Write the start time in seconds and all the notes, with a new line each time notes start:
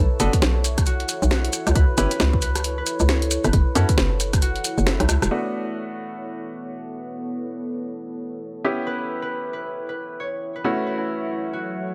Already playing: E4 A4 B4 C#5
0.20 F#1 B3 D4 F#4 A4, open hi-hat, maracas
0.33 kick, closed hi-hat, maracas
0.42 B1, snare, maracas
0.64 open hi-hat, maracas
0.78 kick, cross-stick, closed hi-hat, maracas
0.86 F#4, closed hi-hat, maracas
1.00 open hi-hat
1.08 open hi-hat, maracas
1.22 B1, maracas
1.31 F#4, snare, maracas
1.45 closed hi-hat
1.53 open hi-hat, maracas
1.67 C#2, cross-stick, closed hi-hat, maracas
1.75 C#2 B4, kick, closed hi-hat, maracas
1.98 G1 C#4 E4 G4 B4, open hi-hat, maracas
2.11 B4, closed hi-hat, maracas
2.20 C#2, snare, maracas
2.33 kick
2.42 B4, open hi-hat, maracas
2.56 cross-stick, closed hi-hat, maracas
2.64 closed hi-hat, maracas
2.78 B4
2.86 open hi-hat, maracas
2.99 C#2, maracas
3.09 C#5, snare, maracas
3.22 closed hi-hat
3.31 open hi-hat, maracas
3.44 G1 B4, cross-stick, closed hi-hat, maracas
3.53 F#1, kick, closed hi-hat, maracas
3.75 F#2 C#4 E4 F#4 A4 B4, open hi-hat, maracas
3.89 kick, closed hi-hat, maracas
3.98 F#1, snare, maracas
4.20 open hi-hat, maracas
4.33 kick, cross-stick, closed hi-hat, maracas
4.42 F#4, closed hi-hat, maracas
4.56 open hi-hat
4.64 open hi-hat, maracas
4.78 F#1, maracas
4.87 E4, snare, maracas
5.00 B1, cross-stick, closed hi-hat
5.09 C#2, cross-stick, open hi-hat, maracas
5.22 E1, cross-stick, closed hi-hat, maracas
5.31 A3 B3 D4 F#4
8.64 B3 C#4 E4 G4
8.87 B4
9.01 A4
9.22 B4
9.27 C#5
9.53 B4
9.89 B4
10.20 C#5
10.56 B4
10.64 F#3 A3 C#4 E4 F#4
10.87 B4
11.53 F#4